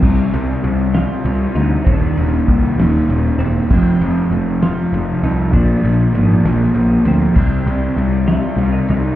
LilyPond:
<<
  \new Staff \with { instrumentName = "Clean electric guitar" } { \time 6/8 \key c \minor \tempo 4. = 65 c'4. f'4 ees'8 | d'2~ d'8 c'8~ | c'4. f'4 ees'8 | d'2~ d'8 c'8~ |
c'4 r8 f'8. ees'16 ees'8 | }
  \new Staff \with { instrumentName = "Distorted electric guitar" } { \clef bass \time 6/8 \key c \minor <c g c'>8 <c g c'>8 <c g c'>8 <c g c'>8 <c g c'>8 <c g c'>8 | <ees, bes, ees>8 <ees, bes, ees>8 <ees, bes, ees>8 <ees, bes, ees>8 <ees, bes, ees>8 <ees, bes, ees>8 | <f, c f>8 <f, c f>8 <f, c f>8 <f, c f>8 <f, c f>8 <f, c f>8 | <bes, f bes>8 <bes, f bes>8 <bes, f bes>8 <bes, f bes>8 <bes, f bes>8 <bes, f bes>8 |
<c g c'>8 <c g c'>8 <c g c'>8 <c g c'>8 <c g c'>8 <c g c'>8 | }
  \new Staff \with { instrumentName = "Picked electric bass" } { \clef bass \time 6/8 \key c \minor c,8 c,8 c,4 c,8 d,8 | ees,,8 ees,,8 c,8 ees,,8 ees,,8 fes,,8 | f,,8 f,,8 f,,4 f,,8 c,8 | bes,,8 bes,,8 aes,,8 bes,,8 bes,,8 d,8 |
c,8 c,8 c,4 c,8 c,8 | }
  \new DrumStaff \with { instrumentName = "Drums" } \drummode { \time 6/8 <cymc bd>8 cymr8 cymr8 <cymr sn>8 cymr8 cymr8 | <bd cymr>8 cymr8 <bd cymr>8 <cymr sn>8 cymr8 cymr8 | <cymc bd>8 cymr8 cymr8 <cymr sn>8 cymr8 cymr8 | <bd cymr>8 cymr8 cymr8 <cymr sn>8 cymr8 cymr8 |
<cymc bd>8 cymr8 cymr8 <cymr sn>8 cymr8 cymr8 | }
>>